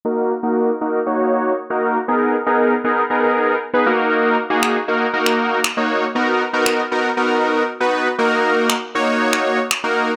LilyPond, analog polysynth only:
\new Staff \with { instrumentName = "Analog polysynth" } { \time 4/4 \key ees \minor \tempo 4 = 118 <bes ees' ges' bes'>8 r16 <bes ees' ges' bes'>8 r16 <bes ees' ges' bes'>16 r16 <bes ees' ges' des''>4 r16 <bes ees' ges' bes'>8 r16 | <ces' ees' aes' bes'>8 r16 <ces' ees' aes' bes'>8 r16 <ces' ees' aes' bes'>16 r16 <ces' ees' aes' bes'>4 r16 <ces' ees' aes' ces''>16 <bes ees' ges' bes'>8~ | <bes ees' ges' bes'>8 r16 <bes ees' ges' aes'>8 r16 <bes ees' ges' bes'>16 r16 <bes ees' ges' bes'>4 r16 <bes ees' ges' des''>8 r16 | <b dis' fis' ais'>8 r16 <b dis' fis' ais'>8 r16 <b dis' fis' ais'>16 r16 <b dis' fis' ais'>4 r16 <b dis' fis' b'>8 r16 |
<bes ees' ges' bes'>4 r8 <bes ees' ges' des''>4~ <bes ees' ges' des''>16 r8 <bes ees' ges' bes'>8 r16 | }